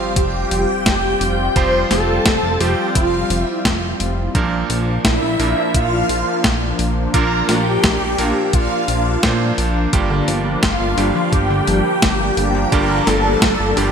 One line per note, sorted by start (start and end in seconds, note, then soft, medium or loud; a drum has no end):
0.00 1.52 F3 medium
0.00 4.31 G3 medium
0.00 1.52 C4 medium
0.00 4.31 C4 medium
0.00 0.18 F4 medium
0.00 1.52 F4 medium
0.00 4.31 F4 medium
0.00 1.52 G4 medium
0.00 1.52 C5 medium
0.00 0.12 F5 medium
0.00 sub drop medium
0.16 0.45 F1 medium
0.16 1.58 G4 loud
0.16 1.52 G5 loud
0.16 kick loud
0.16 closed hi-hat medium
0.51 0.66 F1 loud
0.51 open hi-hat medium
0.86 1.15 F1 medium
0.86 kick loud
0.86 snare loud
0.86 closed hi-hat loud
1.21 1.50 F1 medium
1.21 open hi-hat medium
1.56 1.85 F1 loud
1.56 2.56 F3 medium
1.56 2.56 C4 medium
1.56 2.56 F4 medium
1.56 2.56 G4 medium
1.56 2.56 C5 loud
1.56 1.90 C5 loud
1.56 1.88 C6 loud
1.56 kick loud
1.56 closed hi-hat medium
1.91 2.19 F1 loud
1.91 2.62 A4 loud
1.91 2.56 A5 loud
1.91 snare medium
1.91 open hi-hat medium
2.26 2.40 F1 medium
2.26 kick loud
2.26 snare loud
2.26 closed hi-hat loud
2.43 2.57 F1 medium
2.60 2.75 F1 medium
2.60 4.31 F3 medium
2.60 4.31 C4 medium
2.60 4.31 F4 medium
2.60 4.31 G4 medium
2.60 2.95 G4 loud
2.60 4.31 C5 medium
2.60 2.93 G5 medium
2.60 open hi-hat medium
2.95 3.24 F1 medium
2.95 3.42 F4 medium
2.95 3.41 F5 medium
2.95 kick loud
2.95 closed hi-hat loud
3.30 3.45 F1 loud
3.30 open hi-hat medium
3.41 3.61 E4 medium
3.41 3.61 E5 medium
3.65 3.94 F1 medium
3.65 kick loud
3.65 snare loud
3.65 closed hi-hat loud
4.00 4.29 F1 medium
4.00 open hi-hat medium
4.35 4.64 A#1 loud
4.35 5.35 A#2 medium
4.35 9.89 F3 medium
4.35 5.35 F3 medium
4.35 5.35 A#3 medium
4.35 9.89 A#3 medium
4.35 5.35 D4 medium
4.35 13.92 D4 medium
4.35 5.35 A#4 medium
4.35 kick loud
4.35 closed hi-hat medium
4.70 4.99 A#1 medium
4.70 open hi-hat medium
5.04 5.19 A#1 medium
5.04 5.76 E4 loud
5.04 5.70 E5 loud
5.04 kick loud
5.04 snare loud
5.04 closed hi-hat loud
5.22 5.37 A#1 medium
5.39 5.54 A#1 medium
5.39 7.10 A#2 medium
5.39 7.10 F3 medium
5.39 7.10 A#3 medium
5.39 7.10 D4 medium
5.39 7.10 A#4 medium
5.39 open hi-hat medium
5.74 6.03 A#1 medium
5.74 6.79 F4 loud
5.74 6.75 F5 loud
5.74 kick loud
5.74 closed hi-hat medium
6.09 6.24 A#1 loud
6.09 open hi-hat medium
6.44 6.73 A#1 medium
6.44 kick loud
6.44 snare loud
6.44 closed hi-hat loud
6.79 7.08 A#1 medium
6.79 open hi-hat medium
7.14 7.43 A#1 loud
7.14 8.14 A#2 medium
7.14 8.14 A#3 medium
7.14 8.14 D4 medium
7.14 8.14 F4 medium
7.14 8.14 A#4 loud
7.14 7.47 A#4 loud
7.14 7.46 A#5 loud
7.14 kick loud
7.14 closed hi-hat medium
7.49 7.78 A#1 medium
7.49 8.55 G4 loud
7.49 8.50 G5 loud
7.49 snare medium
7.49 open hi-hat medium
7.84 7.98 A#1 medium
7.84 kick loud
7.84 snare loud
7.84 closed hi-hat medium
8.01 8.16 A#1 medium
8.18 8.33 A#1 medium
8.18 9.20 A#2 medium
8.18 9.20 A#3 medium
8.18 9.20 D4 medium
8.18 9.20 F4 medium
8.18 9.20 A#4 medium
8.18 open hi-hat medium
8.53 8.68 A#1 loud
8.53 9.58 F4 medium
8.53 9.54 F5 medium
8.53 kick loud
8.53 closed hi-hat medium
8.88 9.17 A#1 loud
8.88 open hi-hat medium
9.23 9.52 A#2 medium
9.23 9.89 A#2 medium
9.23 9.89 A#3 medium
9.23 9.89 D4 medium
9.23 9.89 F4 medium
9.23 9.89 C5 loud
9.23 kick loud
9.23 snare loud
9.23 closed hi-hat loud
9.58 9.87 A#1 loud
9.58 open hi-hat medium
9.93 10.22 G1 loud
9.93 10.94 G2 medium
9.93 13.92 F3 medium
9.93 13.92 G3 medium
9.93 10.94 A#3 medium
9.93 13.92 A#3 medium
9.93 10.94 D4 medium
9.93 10.94 F4 medium
9.93 10.94 G4 medium
9.93 kick loud
9.93 closed hi-hat medium
10.10 10.24 D3 loud
10.28 10.57 G1 loud
10.28 10.41 F3 medium
10.28 open hi-hat medium
10.45 10.54 G3 medium
10.63 10.77 G1 medium
10.63 11.29 F4 medium
10.63 11.29 F5 medium
10.63 kick loud
10.63 snare loud
10.63 closed hi-hat loud
10.80 10.95 G1 medium
10.80 10.94 A#3 medium
10.97 11.12 G1 loud
10.97 12.68 G2 medium
10.97 11.14 D3 medium
10.97 12.68 A#3 medium
10.97 12.68 D4 medium
10.97 12.68 F4 medium
10.97 12.68 G4 medium
10.97 open hi-hat medium
11.15 11.29 F3 loud
11.33 11.61 G1 medium
11.33 12.74 G4 loud
11.33 12.68 G5 loud
11.33 kick loud
11.33 closed hi-hat medium
11.50 11.64 D3 loud
11.67 11.82 G1 loud
11.67 11.81 F3 medium
11.67 open hi-hat medium
11.85 11.93 G3 medium
12.02 12.31 G1 medium
12.02 kick loud
12.02 snare loud
12.02 closed hi-hat medium
12.20 12.33 A#3 medium
12.37 12.66 G1 medium
12.37 12.54 D3 medium
12.37 open hi-hat medium
12.55 12.68 F3 loud
12.72 13.01 G1 loud
12.72 13.73 G2 loud
12.72 13.73 A#3 medium
12.72 13.73 D4 medium
12.72 13.73 F4 medium
12.72 13.73 G4 loud
12.72 13.09 A#4 loud
12.72 13.05 A#5 loud
12.72 kick loud
12.72 closed hi-hat medium
12.90 13.03 D3 loud
13.07 13.36 G1 medium
13.07 13.21 F3 medium
13.07 13.78 A4 loud
13.07 13.73 A5 loud
13.07 snare medium
13.07 open hi-hat medium
13.25 13.33 G3 medium
13.42 13.56 G1 medium
13.42 kick loud
13.42 snare loud
13.42 closed hi-hat medium
13.59 13.74 G1 medium
13.59 13.73 A#3 medium
13.77 13.91 G1 loud
13.77 13.92 G2 medium
13.77 13.92 D3 medium
13.77 13.92 A#3 medium
13.77 13.92 D4 medium
13.77 13.92 F4 medium
13.77 13.92 G4 loud
13.77 13.92 G4 medium
13.77 13.92 G5 medium
13.77 open hi-hat medium